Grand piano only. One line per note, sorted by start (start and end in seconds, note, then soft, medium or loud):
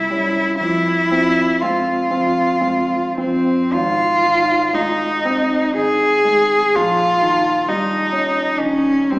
0.00 0.57 C2 soft
0.10 0.55 G3 soft
0.10 0.56 C#4 soft
0.61 3.71 F2 soft
1.11 1.56 F3 soft
1.11 1.56 C4 soft
1.62 2.07 G#3 soft
1.62 2.07 C4 soft
2.11 2.57 F3 soft
2.11 2.57 C4 soft
2.61 3.13 G#3 soft
2.61 3.13 C4 soft
3.18 3.70 F3 soft
3.18 3.70 C4 soft
3.74 6.71 G#1 soft
4.25 5.04 D#3 soft
4.73 5.56 G#3 soft
5.25 6.07 C4 soft
5.76 6.54 D#3 soft
6.25 6.74 G#3 soft
6.75 9.19 A#1 soft
7.22 7.94 D#3 soft
7.68 8.41 G3 soft
8.12 8.88 C#4 soft
8.59 9.19 D#3 soft
9.12 9.19 G3 soft